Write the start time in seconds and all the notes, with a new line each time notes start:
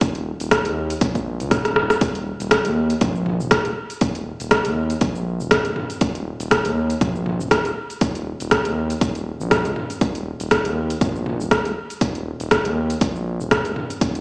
0.01 D#1, kick, closed hi-hat, shaker
0.15 closed hi-hat, shaker
0.40 D#1, closed hi-hat, shaker
0.51 kick, cross-stick, closed hi-hat, shaker
0.65 D#2, closed hi-hat, shaker
0.90 closed hi-hat, shaker
1.01 A#1, kick, closed hi-hat, shaker
1.15 kick, closed hi-hat, shaker
1.40 C#2, closed hi-hat, shaker
1.51 kick, cross-stick, closed hi-hat, mid tom, shaker
1.65 D#1, cross-stick, closed hi-hat, shaker
1.76 cross-stick, mid tom
1.90 cross-stick, closed hi-hat, shaker
2.01 D#1, kick, closed hi-hat, shaker
2.15 closed hi-hat, shaker
2.40 D#1, closed hi-hat, shaker
2.51 kick, cross-stick, closed hi-hat, shaker
2.65 D#2, closed hi-hat, shaker
2.90 closed hi-hat, shaker
3.01 A#1, kick, closed hi-hat, mid tom, shaker
3.15 shaker
3.26 mid tom
3.40 D#1, shaker
3.51 kick, cross-stick, closed hi-hat, shaker
3.65 D#1, closed hi-hat, shaker
3.90 closed hi-hat, shaker
4.01 D#1, kick, closed hi-hat, shaker
4.15 closed hi-hat, shaker
4.40 D#1, closed hi-hat, shaker
4.51 kick, cross-stick, closed hi-hat, shaker
4.65 D#2, closed hi-hat, shaker
4.90 closed hi-hat, shaker
5.01 A#1, kick, closed hi-hat, shaker
5.15 shaker
5.40 D#1, shaker
5.51 kick, cross-stick, closed hi-hat, mid tom, shaker
5.65 D#1, closed hi-hat, shaker
5.76 mid tom
5.90 closed hi-hat, shaker
6.01 D#1, kick, closed hi-hat, shaker
6.15 closed hi-hat, shaker
6.40 D#1, closed hi-hat, shaker
6.51 kick, cross-stick, closed hi-hat, shaker
6.65 D#2, closed hi-hat, shaker
6.90 closed hi-hat, shaker
7.01 A#1, kick, closed hi-hat, mid tom, shaker
7.15 shaker
7.26 mid tom
7.40 D#1, shaker
7.51 kick, cross-stick, closed hi-hat, shaker
7.65 D#1, closed hi-hat, shaker
7.90 closed hi-hat, shaker
8.01 D#1, kick, closed hi-hat, shaker
8.15 closed hi-hat, shaker
8.40 D#1, closed hi-hat, shaker
8.51 kick, cross-stick, closed hi-hat, shaker
8.65 D#2, closed hi-hat, shaker
8.90 closed hi-hat, shaker
9.01 D#1, kick, closed hi-hat, shaker
9.15 closed hi-hat, shaker
9.40 A#1, shaker
9.51 kick, cross-stick, closed hi-hat, mid tom, shaker
9.65 C#2, closed hi-hat, shaker
9.76 mid tom
9.90 closed hi-hat, shaker
10.01 D#1, kick, closed hi-hat, shaker
10.15 closed hi-hat, shaker
10.40 D#1, closed hi-hat, shaker
10.51 kick, cross-stick, closed hi-hat, shaker
10.65 D#2, closed hi-hat, shaker
10.90 closed hi-hat, shaker
11.01 A#1, kick, closed hi-hat, mid tom, shaker
11.16 shaker
11.26 mid tom
11.40 D#1, shaker
11.51 kick, cross-stick, closed hi-hat, shaker
11.65 D#1, closed hi-hat, shaker
11.90 closed hi-hat, shaker
12.01 D#1, kick, closed hi-hat, shaker
12.15 closed hi-hat, shaker
12.40 D#1, closed hi-hat, shaker
12.51 kick, cross-stick, closed hi-hat, shaker
12.65 D#2, closed hi-hat, shaker
12.90 closed hi-hat, shaker
13.01 A#1, kick, closed hi-hat, shaker
13.16 shaker
13.40 D#1, shaker
13.51 kick, cross-stick, closed hi-hat, mid tom, shaker
13.65 D#1, closed hi-hat, shaker
13.76 mid tom
13.90 closed hi-hat, shaker
14.01 D#1, kick, closed hi-hat, shaker
14.15 closed hi-hat, shaker